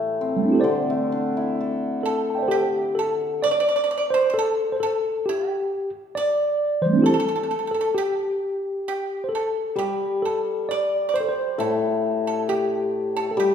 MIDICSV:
0, 0, Header, 1, 4, 480
1, 0, Start_track
1, 0, Tempo, 930233
1, 331, Time_signature, 2, 2, 24, 8
1, 2253, Tempo, 894188
1, 4173, Tempo, 920245
1, 5613, Tempo, 891530
1, 7143, End_track
2, 0, Start_track
2, 0, Title_t, "Pipa"
2, 0, Program_c, 0, 105
2, 1060, Note_on_c, 0, 69, 65
2, 1286, Note_off_c, 0, 69, 0
2, 1296, Note_on_c, 0, 67, 71
2, 1523, Note_off_c, 0, 67, 0
2, 1542, Note_on_c, 0, 69, 67
2, 1764, Note_off_c, 0, 69, 0
2, 1773, Note_on_c, 0, 74, 82
2, 1806, Note_off_c, 0, 74, 0
2, 1812, Note_on_c, 0, 74, 61
2, 1851, Note_off_c, 0, 74, 0
2, 1858, Note_on_c, 0, 74, 71
2, 1894, Note_off_c, 0, 74, 0
2, 1902, Note_on_c, 0, 74, 60
2, 1933, Note_off_c, 0, 74, 0
2, 1940, Note_on_c, 0, 74, 60
2, 1973, Note_off_c, 0, 74, 0
2, 1980, Note_on_c, 0, 74, 54
2, 2011, Note_off_c, 0, 74, 0
2, 2017, Note_on_c, 0, 74, 60
2, 2045, Note_off_c, 0, 74, 0
2, 2051, Note_on_c, 0, 74, 59
2, 2086, Note_off_c, 0, 74, 0
2, 2136, Note_on_c, 0, 72, 78
2, 2211, Note_off_c, 0, 72, 0
2, 2217, Note_on_c, 0, 72, 59
2, 2253, Note_off_c, 0, 72, 0
2, 2263, Note_on_c, 0, 69, 72
2, 2486, Note_off_c, 0, 69, 0
2, 2501, Note_on_c, 0, 69, 74
2, 2724, Note_off_c, 0, 69, 0
2, 2749, Note_on_c, 0, 67, 72
2, 3081, Note_off_c, 0, 67, 0
2, 3223, Note_on_c, 0, 74, 80
2, 3673, Note_off_c, 0, 74, 0
2, 3698, Note_on_c, 0, 69, 75
2, 3731, Note_off_c, 0, 69, 0
2, 3741, Note_on_c, 0, 69, 54
2, 3766, Note_off_c, 0, 69, 0
2, 3773, Note_on_c, 0, 69, 60
2, 3807, Note_off_c, 0, 69, 0
2, 3820, Note_on_c, 0, 69, 48
2, 3851, Note_off_c, 0, 69, 0
2, 3858, Note_on_c, 0, 69, 46
2, 3889, Note_off_c, 0, 69, 0
2, 3900, Note_on_c, 0, 69, 42
2, 3930, Note_off_c, 0, 69, 0
2, 3939, Note_on_c, 0, 69, 46
2, 3969, Note_off_c, 0, 69, 0
2, 3983, Note_on_c, 0, 69, 42
2, 4011, Note_off_c, 0, 69, 0
2, 4028, Note_on_c, 0, 69, 48
2, 4053, Note_off_c, 0, 69, 0
2, 4066, Note_on_c, 0, 69, 47
2, 4092, Note_off_c, 0, 69, 0
2, 4100, Note_on_c, 0, 69, 60
2, 4128, Note_off_c, 0, 69, 0
2, 4191, Note_on_c, 0, 67, 70
2, 4488, Note_off_c, 0, 67, 0
2, 4488, Note_on_c, 0, 64, 70
2, 4634, Note_off_c, 0, 64, 0
2, 4662, Note_on_c, 0, 67, 67
2, 4878, Note_off_c, 0, 67, 0
2, 4907, Note_on_c, 0, 69, 66
2, 5125, Note_off_c, 0, 69, 0
2, 5134, Note_on_c, 0, 67, 66
2, 5360, Note_off_c, 0, 67, 0
2, 5378, Note_on_c, 0, 69, 58
2, 5599, Note_off_c, 0, 69, 0
2, 5616, Note_on_c, 0, 74, 74
2, 5806, Note_off_c, 0, 74, 0
2, 5820, Note_on_c, 0, 74, 49
2, 5856, Note_off_c, 0, 74, 0
2, 5856, Note_on_c, 0, 72, 70
2, 6079, Note_off_c, 0, 72, 0
2, 6095, Note_on_c, 0, 69, 66
2, 6434, Note_off_c, 0, 69, 0
2, 6458, Note_on_c, 0, 69, 69
2, 6568, Note_off_c, 0, 69, 0
2, 6575, Note_on_c, 0, 67, 67
2, 6913, Note_off_c, 0, 67, 0
2, 6938, Note_on_c, 0, 69, 74
2, 7047, Note_off_c, 0, 69, 0
2, 7063, Note_on_c, 0, 67, 71
2, 7143, Note_off_c, 0, 67, 0
2, 7143, End_track
3, 0, Start_track
3, 0, Title_t, "Tine electric piano"
3, 0, Program_c, 1, 4
3, 0, Note_on_c, 1, 69, 71
3, 188, Note_on_c, 1, 55, 38
3, 199, Note_on_c, 1, 57, 42
3, 218, Note_on_c, 1, 60, 48
3, 235, Note_on_c, 1, 62, 48
3, 254, Note_on_c, 1, 64, 55
3, 259, Note_off_c, 1, 55, 0
3, 269, Note_on_c, 1, 67, 60
3, 274, Note_off_c, 1, 57, 0
3, 276, Note_off_c, 1, 69, 0
3, 283, Note_on_c, 1, 69, 58
3, 293, Note_off_c, 1, 60, 0
3, 307, Note_on_c, 1, 72, 65
3, 310, Note_off_c, 1, 62, 0
3, 314, Note_on_c, 1, 74, 85
3, 329, Note_off_c, 1, 64, 0
3, 346, Note_off_c, 1, 67, 0
3, 362, Note_off_c, 1, 69, 0
3, 383, Note_off_c, 1, 72, 0
3, 1031, Note_off_c, 1, 74, 0
3, 1049, Note_on_c, 1, 69, 75
3, 1187, Note_on_c, 1, 81, 36
3, 1213, Note_on_c, 1, 79, 44
3, 1221, Note_on_c, 1, 76, 49
3, 1231, Note_on_c, 1, 74, 50
3, 1252, Note_on_c, 1, 72, 58
3, 1263, Note_off_c, 1, 81, 0
3, 1273, Note_off_c, 1, 69, 0
3, 1279, Note_on_c, 1, 69, 57
3, 1281, Note_on_c, 1, 67, 81
3, 1285, Note_off_c, 1, 79, 0
3, 1298, Note_off_c, 1, 76, 0
3, 1313, Note_off_c, 1, 74, 0
3, 1332, Note_off_c, 1, 72, 0
3, 1355, Note_off_c, 1, 69, 0
3, 1522, Note_on_c, 1, 69, 82
3, 1540, Note_off_c, 1, 67, 0
3, 1768, Note_on_c, 1, 74, 86
3, 1778, Note_off_c, 1, 69, 0
3, 2118, Note_on_c, 1, 72, 82
3, 2140, Note_off_c, 1, 74, 0
3, 2238, Note_on_c, 1, 69, 89
3, 2248, Note_off_c, 1, 72, 0
3, 2445, Note_on_c, 1, 72, 60
3, 2459, Note_off_c, 1, 69, 0
3, 2487, Note_on_c, 1, 69, 83
3, 2490, Note_off_c, 1, 72, 0
3, 2731, Note_on_c, 1, 67, 78
3, 2742, Note_off_c, 1, 69, 0
3, 3073, Note_off_c, 1, 67, 0
3, 3211, Note_on_c, 1, 74, 97
3, 3568, Note_on_c, 1, 52, 38
3, 3570, Note_on_c, 1, 72, 82
3, 3580, Note_off_c, 1, 74, 0
3, 3592, Note_on_c, 1, 55, 44
3, 3609, Note_on_c, 1, 57, 44
3, 3629, Note_on_c, 1, 60, 49
3, 3639, Note_off_c, 1, 52, 0
3, 3645, Note_on_c, 1, 62, 52
3, 3660, Note_off_c, 1, 55, 0
3, 3661, Note_on_c, 1, 64, 54
3, 3677, Note_off_c, 1, 57, 0
3, 3678, Note_on_c, 1, 67, 60
3, 3686, Note_on_c, 1, 69, 76
3, 3694, Note_off_c, 1, 72, 0
3, 3697, Note_off_c, 1, 60, 0
3, 3713, Note_off_c, 1, 62, 0
3, 3731, Note_off_c, 1, 64, 0
3, 3748, Note_off_c, 1, 67, 0
3, 4043, Note_off_c, 1, 69, 0
3, 4050, Note_on_c, 1, 69, 84
3, 4175, Note_off_c, 1, 69, 0
3, 4175, Note_on_c, 1, 67, 79
3, 4849, Note_on_c, 1, 72, 51
3, 4871, Note_off_c, 1, 67, 0
3, 4875, Note_on_c, 1, 69, 72
3, 4886, Note_off_c, 1, 72, 0
3, 5120, Note_on_c, 1, 67, 78
3, 5133, Note_off_c, 1, 69, 0
3, 5362, Note_on_c, 1, 69, 73
3, 5377, Note_off_c, 1, 67, 0
3, 5605, Note_on_c, 1, 74, 80
3, 5614, Note_off_c, 1, 69, 0
3, 5847, Note_on_c, 1, 72, 82
3, 5858, Note_off_c, 1, 74, 0
3, 5882, Note_on_c, 1, 69, 62
3, 5889, Note_off_c, 1, 72, 0
3, 5924, Note_off_c, 1, 69, 0
3, 5927, Note_on_c, 1, 72, 80
3, 6087, Note_on_c, 1, 69, 78
3, 6100, Note_off_c, 1, 72, 0
3, 6575, Note_on_c, 1, 67, 80
3, 6586, Note_off_c, 1, 69, 0
3, 6996, Note_off_c, 1, 67, 0
3, 7017, Note_on_c, 1, 69, 65
3, 7050, Note_on_c, 1, 67, 84
3, 7053, Note_off_c, 1, 69, 0
3, 7143, Note_off_c, 1, 67, 0
3, 7143, End_track
4, 0, Start_track
4, 0, Title_t, "Hammered dulcimer"
4, 0, Program_c, 2, 15
4, 0, Note_on_c, 2, 45, 55
4, 0, Note_on_c, 2, 52, 39
4, 0, Note_on_c, 2, 57, 44
4, 108, Note_on_c, 2, 60, 41
4, 328, Note_off_c, 2, 45, 0
4, 329, Note_on_c, 2, 50, 57
4, 458, Note_off_c, 2, 57, 0
4, 464, Note_on_c, 2, 57, 44
4, 576, Note_off_c, 2, 52, 0
4, 579, Note_on_c, 2, 62, 42
4, 706, Note_on_c, 2, 64, 44
4, 828, Note_on_c, 2, 69, 42
4, 1069, Note_off_c, 2, 60, 0
4, 1429, Note_off_c, 2, 57, 0
4, 1546, Note_off_c, 2, 62, 0
4, 1668, Note_off_c, 2, 64, 0
4, 1780, Note_off_c, 2, 50, 0
4, 1787, Note_off_c, 2, 69, 0
4, 5121, Note_on_c, 2, 55, 56
4, 6088, Note_on_c, 2, 45, 61
4, 6571, Note_off_c, 2, 55, 0
4, 7048, Note_on_c, 2, 55, 68
4, 7143, Note_off_c, 2, 45, 0
4, 7143, Note_off_c, 2, 55, 0
4, 7143, End_track
0, 0, End_of_file